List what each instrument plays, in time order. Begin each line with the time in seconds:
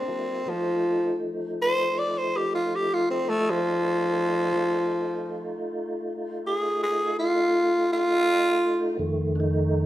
Already playing: tenor saxophone C4
0.08 tonewheel organ F#3 A#3 E4
0.46 tonewheel organ F3 A3 D#4, tenor saxophone F3
1.62 tenor saxophone C5
1.99 tenor saxophone D5
2.18 tenor saxophone C5
2.37 tenor saxophone G4
2.55 tenor saxophone F4
2.75 tenor saxophone G4
2.94 tenor saxophone F4
3.10 tenor saxophone C4
3.29 tenor saxophone A3
3.50 tenor saxophone F3
4.55 tonewheel organ A3 D#4 F4
6.46 tenor saxophone G#4
6.83 tenor saxophone G#4
7.19 tenor saxophone F4
7.93 tenor saxophone F4
8.99 tonewheel organ F2 D#3 A3
9.36 tonewheel organ D4
9.40 tonewheel organ D#4